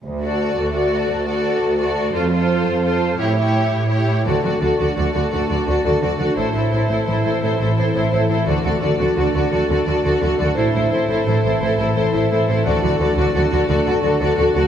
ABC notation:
X:1
M:12/8
L:1/8
Q:3/8=114
K:A
V:1 name="Violin section"
z d3 d3 d3 d2 | =c c3 c2 ^c c3 c2 | [K:Dmix] d d d d d d d d d d d d | c c c c c c c c c c c c |
d d d d d d d d d d d d | c c c c c c c c c c c c | d d d d d d d d d d d d |]
V:2 name="Violin section"
z A3 A3 A3 A2 | A A3 A2 =G G3 G2 | [K:Dmix] A A A A A A A A A A A A | A A A A A A A A A A A A |
A A A A A A A A A A A A | A A A A A A A A A A A A | A A A A A A A A A A A A |]
V:3 name="Viola section"
z F3 F3 F3 F2 | =F F3 F2 E E3 E2 | [K:Dmix] F F F F F F F F F F F F | E E E E E E E E E E E E |
F F F F F F F F F F F F | E E E E E E E E E E E E | F F F F F F F F F F F F |]
V:4 name="Harp"
z12 | z12 | [K:Dmix] D, A D F A, D A, A D F A, D | A,, A C E E, C E, A C E E, C |
D, A D F A, D A, A D F A, D | A,, A C E E, C E, A C E E, C | D, A D F A, D A, A D F A, D |]
V:5 name="Cello section" clef=bass
D,,3 D,,3 D,,3 D,,3 | =F,,3 F,,3 A,,3 A,,3 | [K:Dmix] D, D, D, D, D, D, D, D, D, D, D, D, | A,, A,, A,, A,, A,, A,, A,, A,, A,, A,, A,, A,, |
D, D, D, D, D, D, D, D, D, D, D, D, | A,, A,, A,, A,, A,, A,, A,, A,, A,, A,, A,, A,, | D, D, D, D, D, D, D, D, D, D, D, D, |]
V:6 name="Double bass section" clef=bass
z12 | z12 | [K:Dmix] D,, D,, D,, D,, D,, D,, D,, D,, D,, D,, D,, D,, | A,,, A,,, A,,, A,,, A,,, A,,, A,,, A,,, A,,, A,,, A,,, A,,, |
D,, D,, D,, D,, D,, D,, D,, D,, D,, D,, D,, D,, | A,,, A,,, A,,, A,,, A,,, A,,, A,,, A,,, A,,, A,,, A,,, A,,, | D,, D,, D,, D,, D,, D,, D,, D,, D,, D,, D,, D,, |]